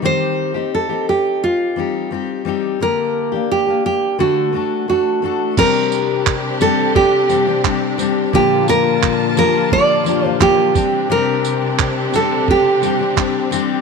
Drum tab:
CC |--------|--------|x-------|--------|
TB |--------|--------|-x-x-x-x|-x-x-x-x|
CP |--------|--------|--x---x-|--x---x-|
BD |--------|--------|o-o-o-o-|o-o-o-oo|

CC |--------|
TB |-x-x-x-x|
CP |--x---x-|
BD |--o-o-o-|